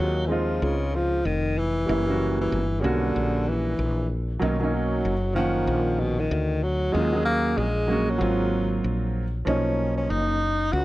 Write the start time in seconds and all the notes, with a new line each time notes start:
Already playing: F#3 F4
0.00 D#2
0.26 E3 G#3 C4
0.31 F3 D#4 F4
0.62 C#2 C#3
0.95 F3
1.25 F1 D#3
1.58 E3
1.86 F#1 G3 A#3 C#4 E4
2.06 G3 A#3 C#4 F#4
2.41 E3
2.52 G1
2.80 B1 C#3 D3 G3 A#3 C#4 F#4
3.16 A#1
3.49 E3
3.79 A#1
4.39 B1 D#3 F#3 A#3 C#4 D#4
4.60 F#3 A#3 C#4 D#4
4.74 F#3
5.05 F#1
5.34 D#3 F3 A#3 C#4 F#5
5.67 A#1
6.00 B2
6.19 D#3
6.31 D2
6.63 F#3
6.92 D#2 F#3 G#3 A#3 C#4 F4
7.12 F#3 A#3 C#4 G#4
7.25 A#3
7.57 A#1 G#3
7.87 F#3 A#3 C#4 F#4
8.10 F#3
8.18 G#1 F#3 A#3 C4 F4
8.84 A#1
9.45 B1 F3 A#3 C#4 D#4
9.97 C#4
10.10 F#1 D#4
10.72 C#2 F#4